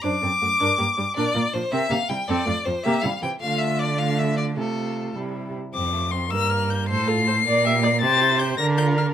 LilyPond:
<<
  \new Staff \with { instrumentName = "Violin" } { \time 6/8 \key g \dorian \tempo 4. = 106 d'''2. | \key f \major d''4 c''8 e''8 f''8 g''8 | d''4 c''8 e''8 f''8 g''8 | f''8 e''8 d''8 f''8 e''8 d''8 |
a'4. r4. | c'8 a8 c'8 bes8 bes8 bes8 | a'8 f'8 a'8 bes'8 g'8 bes'8 | g'8 e'8 g'8 d'8 f'8 d'8 | }
  \new Staff \with { instrumentName = "Violin" } { \time 6/8 \key g \dorian c''8 a'8 fis'8 bes'8 g'8 d'8 | \key f \major bes'8 f'8 d'8 bes'8 g'8 e'8 | a'8 f'8 c'8 g'8 e'8 c'8 | f'4. f'4. |
f'4. e'4 r8 | d'''4 c'''8 e'''8 f'''8 g'''8 | c''''2. | a'''4 g'''8 bes'''8 g'''8 f'''8 | }
  \new Staff \with { instrumentName = "Viola" } { \time 6/8 \key g \dorian d'8 c'8 a8 d'8 bes8 g8 | \key f \major d'8 bes8 f8 c'8 bes8 g8 | c'8 a8 f8 bes8 g8 e8 | a4. a4. |
a4. g4 r8 | r4. bes'4. | c''8 a'8 c''8 d''8 e''8 d''8 | c''4. bes'4. | }
  \new Staff \with { instrumentName = "Cello" } { \clef bass \time 6/8 \key g \dorian fis,8 fis,8 fis,8 g,8 g,8 g,8 | \key f \major bes,8 bes,8 bes,8 c8 c8 c8 | f,8 f,8 f,8 c8 c8 c8 | d2. |
c4. c4 r8 | f,4. g,4. | a,4. bes,4. | c4. d4. | }
>>